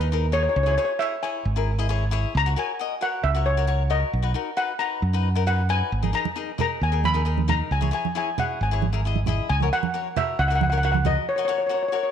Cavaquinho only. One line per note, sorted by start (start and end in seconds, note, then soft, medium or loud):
0.01 0.07 D#4 medium
0.01 0.08 G#4 medium
0.01 0.08 A#4 medium
0.12 0.26 D#4 medium
0.12 0.26 G#4 soft
0.12 0.26 A#4 medium
0.32 0.53 D#4 medium
0.32 0.54 G#4 medium
0.32 0.54 A#4 medium
0.66 0.74 E4 medium
0.66 0.74 G#4 medium
0.66 0.74 C#5 medium
0.78 0.92 E4 medium
0.78 0.92 G#4 medium
0.78 0.92 C#5 medium
1.00 1.14 E4 medium
1.00 1.15 G#4 medium
1.00 1.15 C#5 medium
1.23 1.44 E4 medium
1.23 1.44 G#4 soft
1.23 1.44 C#5 medium
1.56 1.70 E4 medium
1.56 1.70 G#4 medium
1.56 1.71 A#4 medium
1.79 1.86 E4 medium
1.79 1.86 G#4 medium
1.79 1.86 D#5 medium
1.89 2.03 E4 medium
1.89 2.04 G#4 medium
1.89 2.04 C#5 medium
1.89 2.32 G#5 soft
2.11 2.32 E4 medium
2.11 2.33 G#4 medium
2.11 2.33 C#5 medium
2.46 2.53 F#4 medium
2.46 2.53 A#4 medium
2.46 2.53 C#5 medium
2.56 2.71 F#4 medium
2.56 2.71 A#4 soft
2.56 2.71 C#5 medium
2.79 2.93 F#4 medium
2.79 2.94 A#4 medium
2.79 2.94 D#5 medium
3.01 3.22 F#4 medium
3.01 3.22 A#4 medium
3.01 3.23 C#5 medium
3.35 3.49 F#4 medium
3.35 3.49 A#4 medium
3.35 3.49 C#5 medium
3.57 3.64 F#4 medium
3.57 3.65 A#4 medium
3.57 3.65 C#5 medium
3.67 3.82 F#4 medium
3.67 3.82 A#4 medium
3.67 3.82 C#5 medium
3.90 4.11 F#4 medium
3.90 4.11 A#4 medium
3.90 4.11 C#5 medium
4.22 4.31 D#4 soft
4.22 4.31 F#4 medium
4.22 4.31 B4 medium
4.34 4.49 D#4 medium
4.34 4.49 F#4 soft
4.34 4.49 A#4 medium
4.57 4.71 D#4 medium
4.57 4.71 F#4 medium
4.57 4.72 B4 medium
4.79 5.00 D#4 medium
4.79 5.01 F#4 medium
4.79 5.01 B4 medium
5.13 5.27 D#4 medium
5.13 5.28 F#4 soft
5.13 5.28 B4 medium
5.35 5.43 D#4 medium
5.35 5.43 F#4 medium
5.35 5.43 A#4 medium
5.47 5.61 D#4 medium
5.47 5.61 F#4 medium
5.47 5.61 B4 medium
5.69 5.90 D#4 medium
5.69 5.90 F#4 soft
5.69 5.90 B4 medium
6.02 6.10 D#4 medium
6.02 6.10 G#4 medium
6.02 6.10 A#4 medium
6.13 6.27 D#4 medium
6.13 6.28 G#4 soft
6.13 6.28 A#4 medium
6.36 6.50 D#4 medium
6.36 6.50 G#4 medium
6.36 6.51 A#4 medium
6.58 6.79 D#4 medium
6.58 6.79 G#4 soft
6.58 6.80 A#4 medium
6.92 7.06 D#4 medium
6.92 7.06 G#4 medium
6.92 7.06 A#4 medium
7.14 7.21 D#4 medium
7.14 7.22 G#4 medium
7.14 7.22 A#4 medium
7.25 7.39 D#4 medium
7.25 7.40 G#4 medium
7.25 7.40 A#4 medium
7.48 7.68 D#4 medium
7.48 7.69 G#4 medium
7.48 7.69 A#4 medium
7.81 7.88 E4 medium
7.81 7.88 G#4 medium
7.81 7.89 C#5 medium
7.91 8.06 E4 medium
7.91 8.06 G#4 medium
7.91 8.07 C#5 medium
8.15 8.29 E4 medium
8.15 8.29 G#4 medium
8.15 8.29 C#5 medium
8.38 8.58 E4 medium
8.38 8.58 G#4 medium
8.38 8.58 C#5 medium
8.71 8.85 E4 medium
8.71 8.85 G#4 medium
8.71 8.86 C#5 medium
8.93 9.00 E4 medium
8.93 9.00 G#4 medium
8.93 9.00 A#4 medium
9.05 9.19 E4 medium
9.05 9.19 G#4 soft
9.05 9.19 D#5 medium
9.27 9.47 E4 medium
9.27 9.48 G#4 medium
9.27 9.48 D#5 medium
9.62 9.68 F#4 medium
9.62 9.68 A#4 medium
9.62 9.68 C#5 medium
9.73 9.86 F#4 medium
9.73 9.86 A#4 medium
9.73 9.86 C#5 medium
9.94 10.07 F#4 medium
9.94 10.07 A#4 medium
9.94 10.08 C#5 medium
10.16 10.36 F#4 medium
10.16 10.37 A#4 medium
10.16 10.37 C#5 medium
10.50 10.63 F#4 medium
10.50 10.64 A#4 medium
10.50 10.64 E5 medium
10.72 10.78 F#4 medium
10.72 10.79 A#4 medium
10.72 10.79 C#5 medium
10.83 10.96 F#4 medium
10.83 10.97 A#4 medium
10.83 10.97 C#5 medium
11.05 11.25 F#4 medium
11.05 11.25 A#4 medium
11.05 11.25 D#5 medium
11.38 11.45 F#4 medium
11.38 11.45 A#4 medium
11.38 11.45 D#5 medium
11.48 11.62 F#4 medium
11.48 11.62 A#4 medium
11.48 11.63 C#5 medium
11.69 11.84 F#4 medium
11.69 11.84 A#4 medium
11.69 11.84 C#5 medium
11.92 12.11 F#4 medium
11.92 12.11 A#4 medium
11.92 12.11 C#5 medium